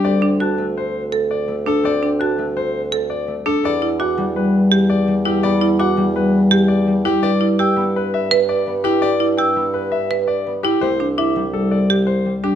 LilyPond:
<<
  \new Staff \with { instrumentName = "Celesta" } { \time 5/4 \key d \mixolydian \tempo 4 = 167 r4 fis'''8 r2. r8 | r4 fis'''8 r2. r8 | r4 d'''8 r2. r8 | r4 d'''8 r2. r8 |
r4 e'''8 r2. r8 | r4 e'''8 r2. r8 | r4 d'''8 r2. r8 | }
  \new Staff \with { instrumentName = "Grand piano" } { \time 5/4 \key d \mixolydian d''8 r8 a''8 r8 c''8 r4 d''8 r8 a'8 | d''8 r8 a''8 r8 c''8 r4 d''8 r8 a'8 | d''8 r8 fis''8 r8 b'8 r4 d''8 r8 g'8 | d''8 r8 fis''8 r8 b'8 r4 d''8 r8 g'8 |
d''8 r8 g''8 r8 b'8 e''8 r8 d''8 r8 g'8 | d''8 r8 g''8 r8 b'8 e''8 r8 d''8 r8 g'8 | c''8 r8 e''8 r8 a'8 d''8 r8 c''8 r8 g'8 | }
  \new Staff \with { instrumentName = "Marimba" } { \time 5/4 \key d \mixolydian r8 d'8 fis'8 r4. a'8 r4 d'8 | r8 d'8 fis'8 r4. a'8 r4 d'8 | r8 e'8 fis'8 r4. g'8 r4 e'8 | r8 e'8 fis'8 r4. g'8 r4 e'8 |
r8 e'8 g'8 r4. b'8 r4 e'8 | r8 e'8 g'8 r4. b'8 r4 e'8 | r8 d'8 e'8 r4. g'8 r4 d'8 | }
  \new Staff \with { instrumentName = "Harp" } { \time 5/4 \key d \mixolydian <a c'>4. a2~ a8 a4 | c'4. a2~ a8 a4 | b4. g2~ g8 g4 | b4. g2~ g8 g4 |
d'4. b2~ b8 b4 | d'4. b2~ b8 b4 | a4. g2~ g8 g4 | }
  \new Staff \with { instrumentName = "Bassoon" } { \clef bass \time 5/4 \key d \mixolydian d,1~ d,4~ | d,1~ d,4 | e,1~ e,4~ | e,1~ e,4 |
g,1~ g,4~ | g,1~ g,4 | c,1~ c,4 | }
>>